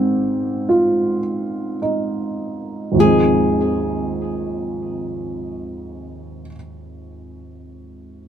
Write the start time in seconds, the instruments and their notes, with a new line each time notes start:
Already playing: upright piano G#2 D#3 C4, nylon-string guitar G#4
0.69 upright piano F4
1.82 upright piano D#4
2.92 upright piano G#1 D#2
2.97 upright piano F3 G#3, nylon-string guitar G#4
3.04 upright piano C4 D#4